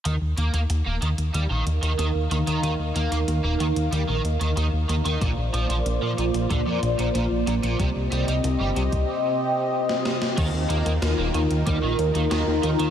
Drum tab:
CC |----------------|----------------|----------------|----------------|
HH |x-xxx-xxx-xxx-xx|x-xxx-xxx-xxx-xx|x-xxx-xxx-xxx-xx|x-xxx-xx--------|
SD |----------------|----------------|----------------|-------------ooo|
BD |----------------|----------------|o-------o-------|o------o--------|

CC |x---------------|
HH |x-xxx-xxx-xxx-xx|
SD |----o-------o---|
BD |o-------o-------|